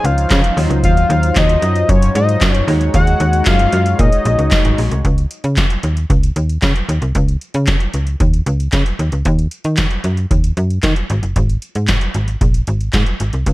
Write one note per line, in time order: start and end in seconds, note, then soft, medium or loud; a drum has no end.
0.00 0.53 F3 medium
0.00 0.53 C#4 medium
0.00 0.54 D#4 medium
0.00 0.57 C5 medium
0.04 0.26 C#2 loud
0.04 0.58 F5 loud
0.04 closed hi-hat medium
0.18 closed hi-hat medium
0.30 0.42 C#3 loud
0.30 kick loud
0.30 snare loud
0.30 clap loud
0.30 closed hi-hat medium
0.44 closed hi-hat medium
0.57 0.68 D#2 loud
0.57 2.64 F#3 medium
0.57 2.64 D#4 medium
0.57 2.64 F4 medium
0.57 2.64 C5 medium
0.57 open hi-hat medium
0.70 0.85 C#2 medium
0.70 closed hi-hat medium
0.84 1.05 D#2 loud
0.84 1.38 F5 loud
0.84 kick loud
0.84 closed hi-hat loud
0.97 closed hi-hat soft
1.10 1.31 D#2 loud
1.10 closed hi-hat medium
1.23 closed hi-hat medium
1.36 1.58 D#2 loud
1.36 1.91 D#5 loud
1.36 kick loud
1.36 snare loud
1.36 clap medium
1.36 closed hi-hat medium
1.49 closed hi-hat medium
1.62 1.84 F#2 medium
1.62 closed hi-hat medium
1.76 closed hi-hat medium
1.89 2.11 F#2 loud
1.89 2.15 C#5 loud
1.89 kick loud
1.89 closed hi-hat medium
2.02 closed hi-hat medium
2.15 2.37 G#2 loud
2.15 2.65 D#5 loud
2.15 closed hi-hat medium
2.29 closed hi-hat medium
2.41 2.63 F#2 loud
2.41 kick loud
2.41 snare loud
2.41 clap medium
2.41 closed hi-hat loud
2.55 closed hi-hat medium
2.68 2.89 D#2 loud
2.68 5.01 G#3 medium
2.68 5.01 D#4 medium
2.68 5.01 F#4 medium
2.68 5.01 C#5 medium
2.68 open hi-hat medium
2.81 closed hi-hat medium
2.94 3.16 D#2 loud
2.94 3.44 F#5 loud
2.94 kick loud
2.94 closed hi-hat medium
3.07 closed hi-hat soft
3.20 3.42 D#2 loud
3.20 closed hi-hat medium
3.33 closed hi-hat medium
3.46 3.68 F#2 loud
3.46 4.02 F5 loud
3.46 kick loud
3.46 snare loud
3.46 clap medium
3.46 closed hi-hat loud
3.59 closed hi-hat medium
3.73 3.95 F#2 medium
3.73 closed hi-hat medium
3.86 closed hi-hat medium
3.99 4.10 A#2 medium
3.99 4.79 D#5 loud
3.99 kick loud
3.99 closed hi-hat medium
4.12 closed hi-hat medium
4.25 4.36 A#1 loud
4.25 closed hi-hat medium
4.39 4.50 C#2 medium
4.39 closed hi-hat soft
4.51 kick loud
4.51 snare loud
4.51 clap medium
4.51 closed hi-hat medium
4.65 4.76 G#1 medium
4.65 closed hi-hat medium
4.78 4.89 A#1 medium
4.78 open hi-hat medium
4.91 5.02 C2 medium
4.91 closed hi-hat medium
5.05 5.26 C#2 loud
5.05 kick medium
5.05 closed hi-hat medium
5.18 closed hi-hat soft
5.31 closed hi-hat medium
5.44 5.66 C#3 medium
5.44 closed hi-hat soft
5.57 kick loud
5.57 snare loud
5.57 clap medium
5.57 closed hi-hat medium
5.70 closed hi-hat soft
5.83 6.05 D#2 medium
5.83 closed hi-hat medium
5.97 closed hi-hat soft
6.10 6.32 C#2 loud
6.10 kick loud
6.10 closed hi-hat medium
6.23 closed hi-hat medium
6.36 6.58 D#2 medium
6.36 closed hi-hat medium
6.49 closed hi-hat soft
6.62 6.73 C#3 loud
6.62 kick loud
6.62 snare loud
6.62 clap medium
6.62 closed hi-hat medium
6.76 closed hi-hat soft
6.89 7.00 D#2 loud
6.89 closed hi-hat medium
7.02 7.13 C2 medium
7.02 closed hi-hat medium
7.15 7.37 C#2 loud
7.15 kick medium
7.15 closed hi-hat medium
7.28 closed hi-hat soft
7.41 closed hi-hat medium
7.54 7.76 C#3 loud
7.54 closed hi-hat medium
7.67 kick loud
7.67 snare loud
7.67 clap medium
7.67 closed hi-hat medium
7.80 closed hi-hat soft
7.94 8.16 C#2 medium
7.94 closed hi-hat medium
8.07 closed hi-hat soft
8.20 8.42 D#2 loud
8.20 kick loud
8.20 closed hi-hat medium
8.34 closed hi-hat medium
8.46 8.68 C#2 loud
8.46 closed hi-hat medium
8.60 closed hi-hat soft
8.72 8.84 C#3 loud
8.72 kick loud
8.72 snare medium
8.72 clap medium
8.72 closed hi-hat medium
8.86 closed hi-hat soft
8.99 9.10 D#2 medium
8.99 closed hi-hat medium
9.12 9.23 C#2 medium
9.12 closed hi-hat soft
9.25 9.47 D#2 loud
9.25 kick medium
9.25 closed hi-hat medium
9.39 closed hi-hat soft
9.51 closed hi-hat medium
9.64 9.87 D#3 medium
9.64 closed hi-hat medium
9.77 kick medium
9.77 snare loud
9.77 clap medium
9.77 closed hi-hat medium
9.91 closed hi-hat soft
10.04 10.26 F#2 medium
10.04 closed hi-hat medium
10.17 closed hi-hat soft
10.31 10.53 D#2 medium
10.31 kick loud
10.31 closed hi-hat medium
10.44 closed hi-hat medium
10.57 10.79 F#2 medium
10.57 closed hi-hat medium
10.70 closed hi-hat soft
10.83 10.94 D#3 loud
10.83 kick loud
10.83 snare medium
10.83 clap medium
10.83 closed hi-hat medium
10.96 closed hi-hat medium
11.10 11.21 G#1 loud
11.10 closed hi-hat medium
11.23 11.34 F#1 medium
11.23 closed hi-hat soft
11.36 11.58 G#1 loud
11.36 kick medium
11.36 closed hi-hat medium
11.50 closed hi-hat soft
11.62 closed hi-hat medium
11.75 11.97 G#2 medium
11.75 closed hi-hat medium
11.88 kick loud
11.88 snare loud
11.88 clap medium
11.88 closed hi-hat medium
12.01 closed hi-hat soft
12.14 12.37 G#1 medium
12.14 closed hi-hat medium
12.28 closed hi-hat soft
12.41 12.63 A#1 medium
12.41 kick loud
12.41 closed hi-hat medium
12.54 closed hi-hat medium
12.67 12.89 G#1 medium
12.67 closed hi-hat medium
12.81 closed hi-hat soft
12.93 13.05 G#2 loud
12.93 kick loud
12.93 snare loud
12.93 clap medium
12.93 closed hi-hat medium
13.06 closed hi-hat medium
13.20 13.31 G#1 medium
13.20 closed hi-hat medium
13.33 13.44 C2 medium
13.33 closed hi-hat medium
13.46 13.53 C#2 loud
13.46 kick medium
13.46 closed hi-hat medium